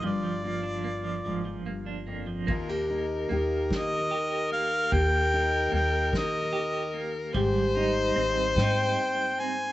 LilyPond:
<<
  \new Staff \with { instrumentName = "Harmonica" } { \time 6/8 \key ees \major \tempo 4. = 49 d''2 r4 | r4. ees''4 f''8 | g''4 g''8 ees''4 r8 | r4. g''4 aes''8 | }
  \new Staff \with { instrumentName = "Violin" } { \time 6/8 \key ees \major r2. | bes'2.~ | bes'2. | c''2. | }
  \new Staff \with { instrumentName = "Steel-string acoustic guitar" } { \time 6/8 \key ees \major << { f'8 f'2~ f'8 | f'16 g'16 ees'8 <bes ees' g'>2 | g'8 ees'8 <bes ees' g'>2 | g'8 ees'8 <c' ees'>2 | } \\ { g,4. aes,8 g,8 f,8 | ees,2. | ees,2. | aes,2. | } >> }
  \new Staff \with { instrumentName = "Clean electric guitar" } { \time 6/8 \key ees \major f16 f16 bes16 d'16 bes16 f16 f16 r16 bes16 d'16 bes16 f16 | bes4 bes4 g'8 bes8 | bes4 bes4 g'8 bes8 | g8 ees'8 c'8 ees'4 c'8 | }
  \new Staff \with { instrumentName = "Upright bass" } { \clef bass \time 6/8 \key ees \major g,,4. g,,4. | ees,4 ees,8 ees8 r4 | ees,4 ees,8 ees8 r4 | aes,,4 aes,,8 aes,8 r4 | }
  \new DrumStaff \with { instrumentName = "Drums" } \drummode { \time 6/8 r4. r4. | <cymc bd>8 cymr8 cymr8 <bd cymr sn>8 cymr8 cymr8 | <bd cymr>8 cymr8 cymr8 <bd sn>8 cymr8 cymr8 | <bd cymr>4 cymr8 <bd cymr sn>4 cymr8 | }
>>